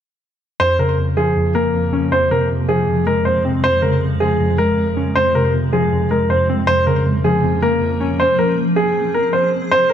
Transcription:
0.60 6.64 F2 medium
0.60 0.97 F2 medium
0.60 0.76 C5 loud
0.79 1.74 C#3 medium
0.79 0.95 A#4 medium
0.98 1.35 F2 medium
1.17 2.12 F3 medium
1.17 1.53 G#4 medium
1.36 1.72 F2 medium
1.55 2.12 A#3 medium
1.55 2.08 A#4 medium
1.74 2.10 F2 medium
1.93 2.12 C#4 medium
2.12 2.49 F2 medium
2.12 5.13 G#3 medium
2.12 2.28 C5 medium
2.31 3.26 C3 medium
2.31 2.47 A#4 medium
2.50 2.86 F2 medium
2.69 3.64 F3 medium
2.69 3.04 G#4 medium
2.88 3.25 F2 medium
3.06 3.64 G#3 medium
3.06 3.22 A#4 medium
3.25 3.64 F2 medium
3.25 3.41 C5 medium
3.45 3.64 C4 medium
3.64 4.01 F2 medium
3.64 3.79 C5 loud
3.82 4.78 C#3 medium
3.82 3.98 A#4 medium
4.02 4.38 F2 medium
4.20 5.16 F3 medium
4.20 4.56 G#4 medium
4.40 4.76 F2 medium
4.58 5.16 G#3 medium
4.58 5.12 A#4 medium
4.78 5.15 F2 medium
4.97 5.16 C#4 medium
5.15 5.52 F2 loud
5.15 5.31 C5 medium
5.35 6.30 C3 medium
5.35 5.50 A#4 medium
5.53 5.91 F2 medium
5.73 6.68 F3 medium
5.73 6.08 G#4 medium
5.92 6.28 F2 medium
6.11 6.68 G#3 medium
6.11 6.26 A#4 medium
6.29 6.67 F2 medium
6.29 6.45 C5 medium
6.49 6.68 C4 medium
6.67 7.04 F2 medium
6.67 9.68 F3 medium
6.67 6.83 C5 loud
6.87 7.82 C#3 medium
6.87 7.02 A#4 medium
7.05 7.43 F2 medium
7.24 8.19 F3 medium
7.24 7.60 G#4 medium
7.44 7.80 F2 medium
7.62 8.20 A#3 medium
7.62 8.16 A#4 medium
7.81 8.19 F2 medium
8.00 8.19 C#4 medium
8.20 9.93 G#4 medium
8.20 8.35 C5 medium
8.39 8.54 A#4 medium
8.76 9.12 G#4 medium
9.14 9.30 A#4 medium
9.33 9.49 C5 medium
9.71 9.87 C5 loud
9.90 9.93 A#4 medium

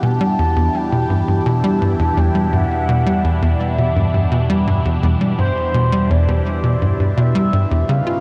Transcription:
0.00 7.85 E2 medium
0.00 7.85 B2 medium
0.00 0.20 B2 loud
0.00 7.85 E3 medium
0.00 7.85 D4 medium
0.00 7.85 E4 medium
0.00 7.85 G4 medium
0.00 0.75 A5 loud
0.21 0.38 G3 loud
0.39 0.56 E2 loud
0.56 0.69 E2 loud
0.74 1.47 G5 loud
0.92 1.05 B2 medium
1.10 1.23 G2 medium
1.28 1.41 G2 medium
1.45 1.63 B2 loud
1.45 2.19 A5 loud
1.64 1.81 G3 loud
1.82 1.94 G2 loud
1.99 2.12 E2 loud
2.17 2.30 E2 loud
2.17 2.54 G5 loud
2.35 2.48 G3 medium
2.52 2.66 G2 medium
2.52 3.59 F#5 loud
2.89 3.06 B2 loud
3.06 3.24 G3 loud
3.24 3.41 E2 loud
3.42 3.55 E2 loud
3.60 4.63 E5 medium
3.78 3.91 B2 medium
3.96 4.09 G2 medium
4.14 4.27 G2 medium
4.32 4.49 B2 loud
4.50 4.67 G3 loud
4.67 4.80 G2 loud
4.85 4.98 E2 loud
5.03 5.16 E2 loud
5.21 5.34 G3 medium
5.38 5.51 G2 medium
5.38 6.12 C5 loud
5.74 5.91 B2 loud
5.92 6.09 G3 loud
6.10 6.27 E2 loud
6.10 7.17 D5 loud
6.28 6.41 E2 loud
6.63 6.76 B2 medium
6.82 6.94 G2 medium
7.00 7.12 G2 medium
7.17 7.34 B2 loud
7.17 7.90 E5 loud
7.35 7.52 G3 loud
7.53 7.66 G2 loud
7.71 7.84 E2 loud
7.88 8.20 C#2 medium
7.88 8.02 C#3 loud
7.88 8.20 C#3 medium
7.88 8.20 C#4 medium
7.88 8.20 D#4 medium
7.88 8.20 F4 medium
7.88 8.20 B4 medium
7.88 8.20 F5 loud
8.07 8.19 F4 medium

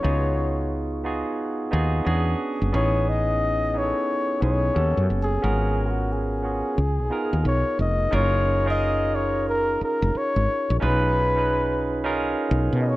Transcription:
0.00 0.91 B3 medium
0.00 0.91 D#4 medium
0.00 0.91 F4 medium
0.00 1.04 C#5 medium
0.04 1.22 C#2 medium
0.04 0.92 F#4 medium
0.04 0.92 G#4 loud
1.04 1.63 B3 medium
1.04 1.63 D#4 medium
1.04 1.63 F4 medium
1.04 1.64 F#4 medium
1.04 1.64 G#4 medium
1.71 2.00 D#2 medium
1.71 2.03 B3 medium
1.71 2.05 D#4 medium
1.71 2.06 F4 medium
1.71 2.06 F#4 medium
1.71 2.06 G#4 medium
2.05 2.33 E2 medium
2.05 2.64 B3 medium
2.05 2.64 C#4 medium
2.05 2.64 D4 medium
2.05 2.65 F#4 medium
2.05 2.65 G#4 loud
2.62 2.71 F#1 medium
2.72 3.92 A1 medium
2.72 3.60 B3 medium
2.72 3.61 C#4 medium
2.72 3.61 D#4 medium
2.72 3.61 E4 medium
2.72 3.62 G#4 medium
2.72 3.10 C#5 medium
3.09 3.79 D#5 loud
3.74 4.33 B3 medium
3.74 4.33 C#4 medium
3.74 4.33 D#4 medium
3.74 4.34 E4 medium
3.74 3.83 G#4 medium
3.74 4.43 C#5 medium
3.83 4.37 A4 medium
4.40 4.69 B1 medium
4.40 4.73 B3 medium
4.40 4.74 C#4 medium
4.40 4.75 D#4 medium
4.40 4.76 E4 medium
4.40 4.76 G#4 medium
4.40 5.06 C#5 medium
4.74 4.93 D#2 medium
4.74 5.33 B3 medium
4.74 5.34 C#4 medium
4.74 5.34 F#4 medium
4.74 5.34 G4 medium
4.74 5.34 A4 medium
4.97 5.07 F#2 medium
5.10 5.37 F#1 medium
5.23 5.88 G#4 medium
5.42 6.61 G#1 medium
5.42 6.30 B3 medium
5.42 6.30 C#4 medium
5.42 6.31 F4 medium
5.42 6.31 F#4 medium
5.42 6.31 A#4 loud
5.86 5.92 F4 medium
5.86 6.14 F#4 medium
6.12 7.46 G#4 medium
6.42 6.77 B3 medium
6.42 6.77 C#4 medium
6.42 6.78 F4 medium
6.42 6.78 F#4 medium
6.42 6.78 G#4 medium
6.78 6.99 C#2 medium
6.99 7.09 B1 medium
7.10 7.98 B3 medium
7.10 7.99 D#4 medium
7.10 7.99 F4 medium
7.10 7.99 G#4 medium
7.10 7.99 A#4 medium
7.33 7.43 D#2 medium
7.45 7.62 B1 medium
7.45 7.77 C#5 medium
7.79 8.06 F1 medium
7.79 8.16 D#5 medium
8.11 9.77 F#1 loud
8.11 8.55 C#4 medium
8.11 8.56 D#4 medium
8.11 8.56 F4 medium
8.11 8.56 G#4 medium
8.11 8.56 A#4 loud
8.15 8.68 C#5 loud
8.65 9.75 C#4 medium
8.65 9.75 D#4 medium
8.65 9.75 F4 medium
8.65 9.76 G#4 medium
8.65 9.76 A#4 medium
8.70 9.17 D#5 loud
9.15 9.48 C#5 loud
9.49 9.79 A#4 loud
9.81 10.19 A#4 medium
9.81 muted fretless electric bass stroke soft
10.02 10.12 F1 medium
10.15 10.78 C#5 loud
10.15 muted fretless electric bass stroke soft
10.36 10.46 G#1 medium
10.70 10.80 A#1 medium
10.79 12.34 B1 loud
10.79 11.25 C#4 loud
10.79 11.25 D#4 medium
10.79 11.26 F4 medium
10.79 11.26 G#4 medium
10.79 11.26 B4 loud
10.79 10.87 C#5 medium
10.86 12.18 B4 loud
11.36 11.89 C#4 medium
11.36 11.89 D#4 medium
11.36 11.90 F4 medium
11.36 11.90 G#4 medium
11.36 11.90 B4 medium
12.04 12.96 C#4 medium
12.04 12.96 D#4 medium
12.04 12.96 F4 medium
12.04 12.96 G#4 medium
12.04 12.96 A#4 loud
12.51 12.68 B1 loud
12.73 12.96 B2 medium
12.81 12.90 D#5 medium
12.88 12.96 C#5 loud

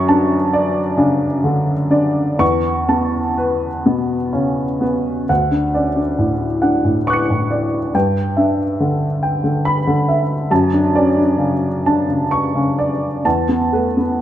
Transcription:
0.00 2.36 F#2 medium
0.00 0.34 C#6 medium
0.09 0.80 D4 medium
0.09 0.80 A5 medium
0.53 1.26 D5 medium
0.97 1.72 C#3 medium
0.97 1.73 D4 soft
1.44 1.92 D3 soft
1.90 2.40 D4 soft
1.90 2.40 D5 soft
2.39 5.25 E2 medium
2.39 3.18 C#6 medium
2.89 3.67 B3 soft
2.89 3.67 A5 soft
3.38 4.15 B4 soft
3.86 4.63 B2 soft
3.86 4.63 B3 soft
4.33 4.82 C#3 soft
4.33 4.82 C#4 soft
4.81 5.29 B3 soft
4.81 5.29 B4 soft
5.29 7.90 D2 soft
5.29 6.00 F#5 soft
5.51 5.87 D4 soft
5.74 5.96 C#4 soft
5.74 6.44 D5 soft
5.96 6.31 D4 soft
6.19 6.83 A2 soft
6.62 6.97 D4 soft
6.62 7.32 F#5 soft
6.85 7.20 A2 soft
7.07 7.77 C#6 medium
7.07 7.91 D6 soft
7.07 7.92 F#6 soft
7.13 7.94 C#7 soft
7.30 7.64 A2 soft
7.51 7.95 D5 soft
7.94 10.47 G2 medium
7.94 8.64 G5 soft
8.37 8.59 D4 soft
8.37 9.05 E5 soft
8.80 9.42 D3 soft
9.23 9.91 G5 soft
9.44 9.78 D3 soft
9.65 10.34 B5 medium
9.87 10.21 D3 soft
10.09 10.51 E5 soft
10.51 13.20 F#2 medium
10.51 11.21 A5 medium
10.73 11.08 D4 soft
10.95 11.17 C#4 soft
10.95 11.66 D5 soft
11.17 11.52 D4 soft
11.38 12.07 C#3 soft
11.86 12.22 D4 soft
11.86 12.59 A5 soft
12.08 12.45 C#3 soft
12.31 13.06 C#6 medium
12.55 12.92 C#3 soft
12.78 13.25 D5 soft
13.25 14.21 E2 soft
13.25 14.01 A5 soft
13.49 13.87 B3 soft
13.73 13.96 A3 soft
13.73 14.21 B4 soft
13.97 14.21 B3 soft

